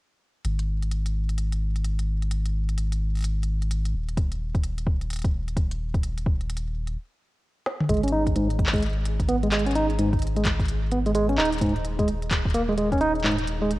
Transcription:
0.45 analog synth bass G#1, closed hi-hat
0.59 closed hi-hat
0.83 closed hi-hat
0.92 closed hi-hat
1.06 closed hi-hat
1.29 closed hi-hat
1.38 closed hi-hat
1.52 closed hi-hat
1.76 closed hi-hat
1.85 closed hi-hat
1.99 closed hi-hat
2.22 closed hi-hat
2.31 closed hi-hat
2.45 closed hi-hat
2.69 closed hi-hat
2.77 closed hi-hat
2.92 closed hi-hat
3.15 closed hi-hat
3.17 closed hi-hat
3.19 closed hi-hat
3.20 closed hi-hat
3.22 closed hi-hat
3.24 closed hi-hat
3.43 closed hi-hat
3.62 closed hi-hat
3.71 closed hi-hat
3.85 closed hi-hat
3.94 analog synth bass D#1
4.08 closed hi-hat
4.17 kick, closed hi-hat
4.32 closed hi-hat
4.55 kick, closed hi-hat
4.64 closed hi-hat
4.78 closed hi-hat
4.87 kick
5.01 closed hi-hat
5.10 closed hi-hat
5.13 closed hi-hat
5.16 closed hi-hat
5.19 closed hi-hat
5.22 kick, closed hi-hat
5.25 closed hi-hat
5.48 closed hi-hat
5.57 kick, closed hi-hat
5.71 closed hi-hat
5.94 kick, closed hi-hat
6.03 closed hi-hat
6.18 closed hi-hat
6.26 kick
6.41 closed hi-hat
6.50 closed hi-hat
6.57 closed hi-hat
6.87 closed hi-hat
7.66 snare
7.80 mid tom
7.89 analog synth bass G#1, tine electric piano G#3, kick, closed hi-hat
7.94 closed hi-hat
7.97 closed hi-hat
8.04 tine electric piano C#4, closed hi-hat
8.08 closed hi-hat
8.13 tine electric piano D#4
8.27 kick, closed hi-hat
8.36 tine electric piano G#2, closed hi-hat
8.50 closed hi-hat
8.59 kick, closed hi-hat
8.66 clap
8.73 tine electric piano G#3, kick, closed hi-hat
8.76 closed hi-hat
8.78 closed hi-hat
8.80 closed hi-hat
8.82 closed hi-hat
8.86 closed hi-hat
8.90 closed hi-hat
8.93 closed hi-hat
9.06 closed hi-hat
9.20 kick, closed hi-hat
9.29 tine electric piano B3, closed hi-hat
9.43 tine electric piano G#3, closed hi-hat
9.52 tine electric piano G#3, clap, closed hi-hat
9.59 closed hi-hat
9.66 tine electric piano C#4, closed hi-hat
9.71 closed hi-hat
9.75 tine electric piano D#4, closed hi-hat
9.90 closed hi-hat
9.98 tine electric piano G#2, closed hi-hat
10.13 kick, closed hi-hat
10.19 closed hi-hat
10.22 closed hi-hat
10.27 closed hi-hat
10.36 tine electric piano G#3, closed hi-hat
10.45 kick, clap, closed hi-hat
10.59 kick, closed hi-hat
10.65 closed hi-hat
10.68 closed hi-hat
10.91 tine electric piano B3, closed hi-hat
11.06 tine electric piano G#3, closed hi-hat
11.15 tine electric piano G#3, closed hi-hat
11.29 tine electric piano C#4, closed hi-hat
11.38 analog synth bass D#1, tine electric piano D#4, clap
11.45 closed hi-hat
11.52 closed hi-hat
11.58 tine electric piano G#2, kick, closed hi-hat
11.61 closed hi-hat
11.69 closed hi-hat
11.76 closed hi-hat
11.85 closed hi-hat
11.99 tine electric piano G#3, kick, closed hi-hat
12.08 closed hi-hat
12.22 closed hi-hat
12.31 kick, clap, closed hi-hat
12.45 kick
12.50 closed hi-hat
12.54 tine electric piano A#3, closed hi-hat
12.69 tine electric piano G#3
12.78 tine electric piano G#3, closed hi-hat
12.92 tine electric piano C#4, kick, closed hi-hat
12.98 closed hi-hat
13.01 tine electric piano D#4, closed hi-hat
13.15 closed hi-hat
13.20 closed hi-hat
13.24 tine electric piano G#2, clap, closed hi-hat
13.31 closed hi-hat
13.38 closed hi-hat
13.47 closed hi-hat
13.62 tine electric piano G#3
13.71 closed hi-hat

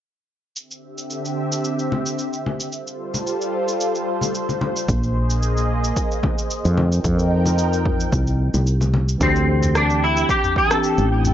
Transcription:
0.56 analog synth pad D3 C4 G4 E5, shaker
0.71 shaker
0.98 shaker
1.10 shaker
1.25 shaker
1.52 shaker
1.64 shaker
1.79 shaker
1.92 high conga
2.06 shaker
2.19 shaker
2.33 shaker
2.46 high conga
2.60 shaker
2.72 analog synth pad G3 F4 A4 C5, shaker
2.87 shaker
3.14 high conga, shaker
3.27 shaker
3.41 shaker
3.68 shaker
3.81 shaker
3.95 shaker
4.21 high conga, shaker
4.35 shaker
4.49 high conga, shaker
4.61 high conga
4.76 shaker
4.89 fretless electric bass A#1, analog synth pad A#3 G#4 D#5, kick, shaker
5.03 shaker
5.30 shaker
5.43 shaker
5.57 shaker
5.84 shaker
5.97 kick, shaker
6.11 shaker
6.23 kick, high conga
6.38 shaker
6.51 shaker
6.65 fretless electric bass F2, shaker
6.77 analog synth pad F3 D#4 A#4 G5, high conga
6.92 shaker
7.04 fretless electric bass F2, kick, shaker
7.19 shaker
7.46 high conga, shaker
7.58 shaker
7.73 shaker
7.86 kick
8.00 shaker
8.12 fretless electric bass C2, kick, shaker
8.27 shaker
8.54 fretless electric bass C2, high conga, shaker
8.67 shaker
8.81 high conga, shaker
8.94 high conga
9.09 shaker
9.18 fretless electric bass D2, tine electric piano E3 C4 D4, synth texture G4 G5, kick, shaker
9.23 clean electric guitar C4, tine electric piano G4
9.36 shaker
9.63 mid tom, shaker
9.75 clean electric guitar D4, cross-stick, shaker
9.90 shaker
10.04 clean electric guitar E4
10.17 shaker
10.29 clean electric guitar G4, kick, shaker
10.44 mid tom, shaker
10.56 clean electric guitar A4, kick
10.68 tine electric piano E3 C4 D4, cross-stick, shaker
10.73 tine electric piano G4
10.83 shaker
10.98 fretless electric bass A1, shaker
11.25 mid tom, shaker

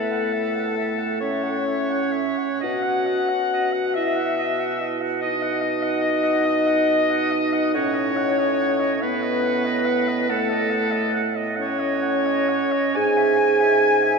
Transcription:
Already playing: bassoon A2, french horn A3, oboe A4, flute A4, clarinet E5
0.12 clarinet F#5
0.34 clarinet E5
0.56 clarinet F#5
0.77 clarinet E5
0.98 clarinet F#5
1.21 french horn C#4, oboe C#5, flute C#5, clarinet E5
1.43 clarinet F#5
1.66 clarinet E5
1.90 clarinet F#5
2.13 clarinet E5
2.38 clarinet F#5
2.60 bassoon B2, clarinet D#5, flute F#5, oboe F#5
2.65 french horn F#4
2.83 clarinet F#5
3.06 clarinet D#5
3.29 clarinet F#5
3.53 clarinet D#5
3.73 clarinet F#5
3.94 french horn E4, clarinet D#5, flute E5, oboe E5
4.16 clarinet F#5
4.38 clarinet D#5
4.59 clarinet F#5
4.80 clarinet D#5
5.01 clarinet F#5
5.22 french horn D#4, oboe D#5, flute D#5, clarinet D#5
5.43 clarinet F#5
5.62 clarinet D#5
5.83 clarinet F#5
6.03 clarinet D#5
6.24 clarinet F#5
6.46 clarinet D#5
6.67 clarinet F#5
6.89 clarinet D#5
7.10 clarinet F#5
7.32 clarinet D#5
7.53 clarinet F#5
7.74 bassoon A2, french horn C#4, oboe C#5, flute C#5, clarinet F#5
7.95 clarinet D#5
8.17 clarinet F#5
8.39 clarinet D#5
8.60 clarinet F#5
8.80 clarinet D#5
9.02 french horn B3, oboe B4, flute B4, clarinet F#5
9.22 clarinet D#5
9.43 clarinet F#5
9.65 clarinet D#5
9.86 clarinet F#5
10.08 clarinet D#5
10.29 french horn A3, flute A4, oboe A4, clarinet F#5
10.50 clarinet D#5
10.71 clarinet F#5
10.92 clarinet D#5
11.14 clarinet F#5
11.36 clarinet D#5
11.56 french horn C#4, oboe C#5, clarinet F#5
11.60 flute C#5
11.80 clarinet D#5
12.02 clarinet F#5
12.26 clarinet D#5
12.49 clarinet F#5
12.72 clarinet D#5
12.94 bassoon G#2, french horn G#4, flute G#5, clarinet G#5, oboe G#5
13.17 clarinet E5
13.38 clarinet G#5
13.61 clarinet E5
13.80 clarinet G#5
14.03 clarinet E5

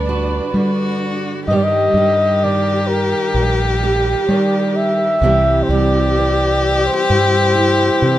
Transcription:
Already playing: fretless electric bass D2, steel-string acoustic guitar G2 D3 G3, string section G3 D4 E4 D5, violin D4, flugelhorn B4
0.09 steel-string acoustic guitar F#4
0.53 steel-string acoustic guitar D3, fretless electric bass G3, violin F#4
1.46 fretless electric bass G2, string section D#3 F4 A#4, violin G4, flugelhorn D#5
1.50 steel-string acoustic guitar G2 D#3 G3 G4
1.56 flugelhorn D5
1.63 flugelhorn D#5
1.94 fretless electric bass G2, steel-string acoustic guitar G3
2.44 steel-string acoustic guitar D#3, flugelhorn D5
2.87 flugelhorn A#4
3.34 fretless electric bass A#1, steel-string acoustic guitar G2
3.83 steel-string acoustic guitar G4
4.28 steel-string acoustic guitar D#3, fretless electric bass G3, flugelhorn D5
4.76 flugelhorn E5
5.21 fretless electric bass C2, string section C3 E4, steel-string acoustic guitar C3 E3 G3 C4 E4, violin G4
5.63 flugelhorn C5
5.69 fretless electric bass C2, steel-string acoustic guitar G3, flugelhorn D5
6.17 steel-string acoustic guitar E3
6.87 flugelhorn C5
7.09 steel-string acoustic guitar G2, fretless electric bass G2, string section A3
7.55 steel-string acoustic guitar E4
8.01 fretless electric bass C3, steel-string acoustic guitar E3

